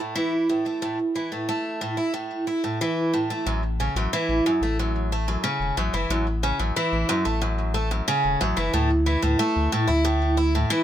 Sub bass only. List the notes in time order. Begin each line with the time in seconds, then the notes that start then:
3.46 A1
3.95 A1
4.29 A1
4.61 A1
5.60 E1
5.77 A1
5.93 F#1
6.10 A1
6.60 A1
6.92 A1
7.26 A1
8.24 E1
8.42 A1
8.57 F#1
8.74 D2
9.23 D2
9.56 D2
9.89 D2